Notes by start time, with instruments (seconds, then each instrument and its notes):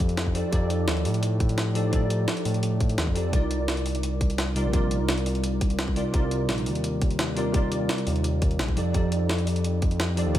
Already playing: analog synth bass F2, tine electric piano F3 D#4 G4 A4 D5
0.09 closed hi-hat
0.17 snare, closed hi-hat
0.26 kick
0.34 tine electric piano F3 D#4 G4 A4 D5, open hi-hat
0.51 analog synth bass F2, tine electric piano F3 D#4 G4 A4, kick, closed hi-hat
0.55 tine electric piano D5
0.70 closed hi-hat
0.88 analog synth bass D#2, snare, closed hi-hat
0.97 closed hi-hat
1.05 analog synth bass A2, open hi-hat
1.14 closed hi-hat
1.23 closed hi-hat
1.40 kick, closed hi-hat
1.49 closed hi-hat
1.58 snare, closed hi-hat
1.74 tine electric piano F3 D#4 G4 A4 D5, open hi-hat
1.91 tine electric piano F3 D#4 G4 A4, kick, closed hi-hat
1.95 tine electric piano D5
2.10 closed hi-hat
2.28 snare, closed hi-hat
2.37 closed hi-hat
2.45 analog synth bass A2, open hi-hat
2.54 closed hi-hat
2.63 closed hi-hat
2.80 kick, closed hi-hat
2.89 closed hi-hat
2.98 analog synth bass D#2, snare, closed hi-hat
3.07 analog synth bass F2, kick
3.15 tine electric piano F3 D#4 G4 A4 D5, open hi-hat
3.31 analog synth bass C2, tine electric piano C3 G3 D#4 F4 A#4, kick, closed hi-hat
3.36 tine electric piano D5
3.51 closed hi-hat
3.68 snare, closed hi-hat
3.77 closed hi-hat
3.86 open hi-hat
3.95 closed hi-hat
4.03 closed hi-hat
4.21 kick, closed hi-hat
4.30 closed hi-hat
4.38 snare, closed hi-hat
4.55 tine electric piano C3 G3 D#4 F4 A#4 D5, open hi-hat
4.65 analog synth bass A#1
4.71 tine electric piano C3 G3 D#4 F4 A#4, kick, closed hi-hat
4.76 tine electric piano D5
4.91 closed hi-hat
5.00 analog synth bass C2
5.09 snare, closed hi-hat
5.18 closed hi-hat
5.26 open hi-hat
5.35 closed hi-hat
5.44 closed hi-hat
5.61 kick, closed hi-hat
5.70 closed hi-hat
5.79 snare, closed hi-hat
5.88 kick
5.95 tine electric piano C3 G3 D#4 F4 A#4 D5, open hi-hat
6.12 analog synth bass C2, tine electric piano C3 G3 D#4 F4 A#4, kick, closed hi-hat
6.16 tine electric piano D5
6.31 closed hi-hat
6.49 analog synth bass A#1, snare, closed hi-hat
6.58 closed hi-hat
6.66 analog synth bass D#2, open hi-hat
6.75 closed hi-hat
6.84 closed hi-hat
7.01 kick, closed hi-hat
7.11 closed hi-hat
7.19 snare, closed hi-hat
7.35 tine electric piano C3 G3 D#4 F4 A#4 D5, open hi-hat
7.52 tine electric piano C3 G3 D#4 F4 A#4, kick, closed hi-hat
7.56 tine electric piano D5
7.72 closed hi-hat
7.89 snare, closed hi-hat
7.98 closed hi-hat
8.07 analog synth bass D#2, open hi-hat
8.16 closed hi-hat
8.24 closed hi-hat
8.42 kick, closed hi-hat
8.51 closed hi-hat
8.59 analog synth bass A#1, snare, closed hi-hat
8.68 kick
8.76 analog synth bass F2, tine electric piano F3 D#4 G4 A4 D5, open hi-hat
8.92 analog synth bass F2, tine electric piano F3 D#4 G4 A4, kick, closed hi-hat
8.97 tine electric piano D5
9.12 closed hi-hat
9.29 snare, closed hi-hat
9.38 closed hi-hat
9.47 open hi-hat
9.56 closed hi-hat
9.64 closed hi-hat
9.82 kick, closed hi-hat
9.91 closed hi-hat
10.00 snare, closed hi-hat
10.16 tine electric piano F3 D#4 G4 A4 D5, open hi-hat
10.26 analog synth bass D#2
10.33 tine electric piano F3 D#4 G4, kick, closed hi-hat